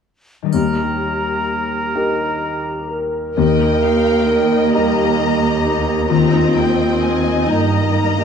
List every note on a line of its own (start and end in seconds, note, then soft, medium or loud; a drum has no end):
0.43 3.35 D#3 soft
0.43 4.34 G3 soft
0.43 3.82 D#4 soft
0.49 4.28 A#4 soft
0.49 2.99 A#4 soft
0.49 2.99 A#5 soft
0.49 triangle soft
0.53 1.91 D#2 soft
0.53 2.85 G4 soft
1.95 3.33 D#4 soft
1.95 3.33 G4 soft
1.95 3.33 A#4 soft
2.90 4.71 A#4 medium
3.36 7.43 D#2 soft
3.36 4.71 D#2 soft
3.36 6.09 D#3 soft
3.36 6.05 A#3 soft
3.36 3.80 D#5 soft
3.36 4.71 G5 soft
3.60 5.87 A#3 soft
3.83 5.64 D#4 soft
3.83 4.29 F5 soft
4.28 5.19 A#4 soft
4.28 6.09 D#5 soft
4.52 4.96 D#5 soft
4.75 8.24 G3 soft
4.75 8.24 D#4 soft
4.75 6.12 G4 medium
4.75 8.24 A#4 soft
4.75 6.09 A#5 soft
4.75 8.24 A#5 soft
4.98 7.23 D#5 soft
5.20 6.99 A#4 soft
5.65 6.31 D#4 soft
5.88 6.54 A#3 soft
6.10 8.24 D#3 soft
6.10 7.44 C4 soft
6.10 7.48 F4 medium
6.10 8.24 D#5 soft
6.10 6.54 A#5 soft
6.33 8.24 D#4 soft
6.55 8.24 A#3 soft
6.55 7.01 G5 soft
7.00 7.93 A#4 soft
7.00 7.47 G#5 soft
7.24 7.69 D#5 soft
7.46 8.24 G2 soft
7.46 8.24 A#3 soft
7.46 8.24 D#4 soft
7.46 8.24 G5 soft
7.46 8.24 A#5 soft
7.70 8.24 D#5 soft
7.94 8.24 A#4 soft
8.18 8.24 G4 soft